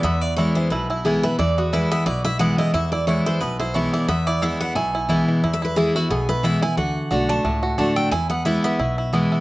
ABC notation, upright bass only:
X:1
M:4/4
L:1/8
Q:"Swing" 1/4=178
K:Emix
V:1 name="Upright bass" clef=bass
E,,4 B,,,4 | E,,4 B,,,4 | E,,4 B,,,4 | E,,4 B,,,4 |
E,,4 B,,,4 | D,,2 B,,,2 C,,2 D,,2 | E,,4 B,,,4 |]